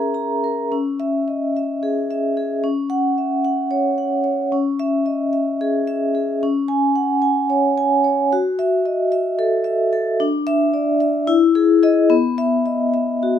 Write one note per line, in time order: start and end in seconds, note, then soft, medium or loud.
0.00 0.67 C#4 medium
0.00 0.32 G#4 soft
0.00 0.44 A#4 soft
0.00 0.74 E5 soft
0.00 0.14 A#5 medium
0.14 0.60 A#5 soft
0.44 0.72 A#4 soft
0.72 2.60 C#4 medium
1.00 1.44 E5 medium
1.28 1.55 D#5 soft
1.57 1.99 E5 soft
1.83 2.26 G#4 soft
2.11 2.53 E5 soft
2.37 2.64 G#4 soft
2.64 4.49 C#4 medium
2.90 3.34 F#5 medium
3.18 3.45 E5 soft
3.45 3.88 F#5 soft
3.71 4.15 C#5 soft
3.98 4.42 F#5 soft
4.24 4.52 C#5 soft
4.52 6.38 C#4 medium
4.79 5.23 E5 medium
5.06 5.33 D#5 soft
5.33 5.77 E5 soft
5.61 6.04 G#4 medium
5.87 6.31 E5 medium
6.15 6.42 G#4 soft
6.43 8.27 C#4 medium
6.68 7.12 G#5 medium
6.96 7.23 F#5 soft
7.22 7.65 G#5 medium
7.50 7.93 C#5 medium
7.78 8.20 G#5 medium
8.04 8.31 C#5 medium
8.33 10.17 F#4 medium
8.59 9.01 E5 medium
8.86 9.12 D#5 soft
9.12 9.55 E5 medium
9.39 9.82 A4 medium
9.64 10.08 E5 medium
9.93 10.20 A4 medium
10.20 11.26 D4 medium
10.47 10.90 E5 medium
10.74 11.01 D5 soft
11.00 11.28 E5 medium
11.27 12.07 E4 medium
11.55 11.82 G#4 medium
11.83 12.08 G#4 medium
11.83 12.08 D#5 medium
12.10 13.39 B3 medium
12.38 12.82 E5 medium
12.66 12.93 D#5 soft
12.94 13.38 E5 medium
13.23 13.39 F#4 medium